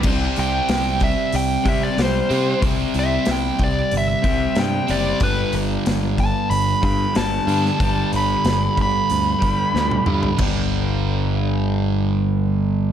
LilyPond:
<<
  \new Staff \with { instrumentName = "Lead electric guitar" } { \time 4/4 \key c \lydian \tempo 4 = 93 r8 g''4 e''8 g''8 e''16 d''16 c''4 | r8 e''8 g''8 d''8 e''4 g''8 d''8 | b'8 r4 a''8 b''8 b''8 a''4~ | a''8 b''4 b''2~ b''8 |
r1 | }
  \new Staff \with { instrumentName = "Distorted electric guitar" } { \clef bass \time 4/4 \key c \lydian <c g c'>2.~ <c g c'>8 <c g c'>8 | <c g c'>2.~ <c g c'>8 <c g c'>8 | <g, d g>2.~ <g, d g>8 <g, d g>8 | <g, d g>2.~ <g, d g>8 <g, d g>8 |
<g, d g>1 | }
  \new Staff \with { instrumentName = "Overdriven electric guitar" } { \clef bass \time 4/4 \key c \lydian <c g c'>2~ <c g c'>8 <c g c'>8 <c g c'>4 | <c g c'>2~ <c g c'>8 <c g c'>8 <c g c'>4 | <g, d g>2~ <g, d g>8 <g, d g>8 <g, d g>4 | <g, d g>2~ <g, d g>8 <g, d g>8 <g, d g>4 |
<g, d g>1 | }
  \new Staff \with { instrumentName = "Picked electric bass" } { \clef bass \time 4/4 \key c \lydian c,8 c,8 c,4 c,8 c8 c,8 c8 | c,8 c,8 c,8 c,8 g,,8 c,8 g,8 fis,,8 | g,,8 g,,8 g,,4 g,,8 g,8 g,,8 g,8 | g,,8 g,,8 g,,8 g,,8 d,8 g,,8 d,8 g,8 |
g,,1 | }
  \new DrumStaff \with { instrumentName = "Drums" } \drummode { \time 4/4 <cymc bd>8 hho8 <hho sn>8 <hho bd>8 hho8 <hho bd>8 <hho sn>8 hho8 | <hho bd>8 hho8 <hho sn>8 <hho bd>8 hho8 <hho bd>8 <hho sn>8 hho8 | <hho bd>8 hho8 <hho sn>8 <hho bd>8 hho8 <hho bd>8 <hho sn>8 hho16 sn16 | <hho bd>8 hho8 <hho sn>8 <hho bd>8 hho8 <hho bd>8 sn16 tommh16 toml16 tomfh16 |
<cymc bd tomfh>4 r4 r4 r4 | }
>>